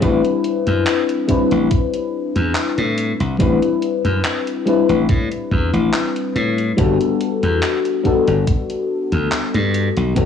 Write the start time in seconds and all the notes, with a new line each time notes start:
0.01 A1 G3 C4 D4 E4 B4, kick, closed hi-hat
0.25 closed hi-hat
0.44 closed hi-hat
0.67 F#2, closed hi-hat
0.87 clap, closed hi-hat
1.09 closed hi-hat
1.28 G3 C4 D4 E4 B4, kick, closed hi-hat
1.51 A1, closed hi-hat
1.71 kick, closed hi-hat
1.94 closed hi-hat
2.36 E2, closed hi-hat
2.55 clap, closed hi-hat
2.78 A2, closed hi-hat
2.98 closed hi-hat
3.20 C2, closed hi-hat
3.39 A1 G3 C4 D4 E4 B4, kick, closed hi-hat
3.62 closed hi-hat
3.82 closed hi-hat
4.05 F#2, closed hi-hat
4.24 clap, closed hi-hat
4.47 closed hi-hat
4.65 G3 C4 D4 E4 B4, closed hi-hat
4.89 A1, closed hi-hat
5.09 A2, kick, closed hi-hat
5.32 closed hi-hat
5.51 E2, kick
5.73 A1, closed hi-hat
5.94 clap, closed hi-hat
6.16 closed hi-hat
6.36 A2, closed hi-hat
6.58 closed hi-hat
6.77 G1 G3 B3 D4 F#4 A4, kick, closed hi-hat
7.01 closed hi-hat
7.21 closed hi-hat
7.43 E2, closed hi-hat
7.63 clap, closed hi-hat
7.85 closed hi-hat
8.04 G3 B3 D4 F#4 A4, kick, closed hi-hat
8.28 G1, closed hi-hat
8.47 kick, closed hi-hat
8.70 closed hi-hat
9.12 D2, closed hi-hat
9.32 clap, closed hi-hat
9.54 G2, closed hi-hat
9.74 closed hi-hat
9.97 B1, closed hi-hat
10.15 G1 G3 B3 D4 F#4 A4, kick, closed hi-hat